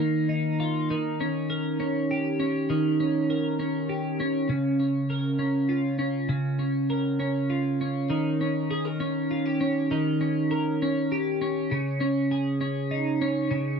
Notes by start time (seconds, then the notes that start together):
Already playing: D#3 D#4
0.00 A#3
0.29 D#4
0.60 F4
0.90 D#3
1.20 C#4
1.50 A#4
1.80 C#4
2.11 G4
2.40 C#4
2.70 D#3
3.00 C#4
3.30 A#4
3.59 C#4
3.89 G4
4.20 C#4
4.49 C#3
4.80 C#4
5.10 A#4
5.39 C#4
5.69 F4
5.99 C#4
6.29 C#3
6.59 C#4
6.90 A#4
7.20 C#4
7.50 F4
7.81 C#4
8.10 D#3
8.41 C#4
8.71 G#4
8.85 A#4
9.00 C#4
9.31 F4
9.46 G4
9.61 C#4
9.91 D#3
10.21 C#4
10.51 A#4
10.82 C#4
11.12 G4
11.41 C#4
11.71 C#3
12.01 C#4
12.31 G#4
12.61 C#4
12.91 D#4
13.22 C#4
13.51 C#3